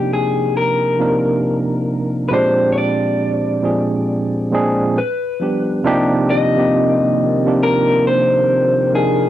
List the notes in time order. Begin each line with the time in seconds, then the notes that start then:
Already playing: C3 F3 A#3 D4 D#4 G4
0.13 G#4
0.57 A#4
0.98 C3 F3 A#3 D4 D#4 A#4
2.29 A#2 F3 G#3 C4 B4
2.33 D4 G4 C5
2.72 C#5
2.78 D5
3.62 A#2 F3 G#3 C4 D4 G#4
4.52 A#2 F3 G#3 C4 D4 G#4
4.98 B4
5.40 F3 G3 B3 D4 G4
5.84 C3 D#3 F3 A#3 C4 D4 D#4 F4 G4 A#4
6.30 D#5
6.56 C3 F3 A#3 C4 D#4 G4
7.45 C3 F3 A#3 D4 D#4 G4
7.63 A#4
8.07 C5
8.93 C3 F3 A#3 D4 D#4 G#4 A#4